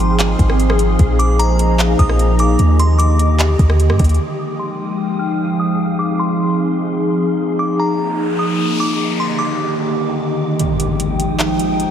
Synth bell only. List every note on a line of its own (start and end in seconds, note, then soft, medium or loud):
0.00 0.55 C6 medium
1.19 1.38 D6 medium
1.39 1.96 A#5 medium
1.99 2.37 D#6 medium
2.40 2.59 D6 medium
2.80 2.99 C6 medium
2.99 3.75 D6 medium
4.39 4.58 D#6 medium
4.59 5.16 C6 medium
5.19 5.57 F6 medium
5.60 5.79 D#6 medium
5.99 6.18 D6 medium
6.19 6.95 C6 medium
7.59 7.78 D6 medium
7.80 8.36 A#5 medium
8.39 8.77 D#6 medium
8.80 8.99 D6 medium
9.20 9.39 C6 medium
9.39 10.15 D6 medium